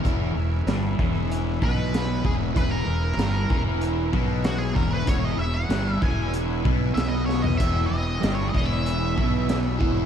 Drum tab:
CC |----------------|----------------|----------------|x---------------|
HH |x---x---x---x---|x---x---x---x---|x---x---x---x---|x---x---x---x---|
SD |----o-------o---|----o-------o-o-|----o-------o-o-|----o-o-----o---|
FT |----------------|----------------|---------------o|----------------|
BD |o-----o---o---o-|o-----o---o---o-|o-----o---o-----|o-----o---o---o-|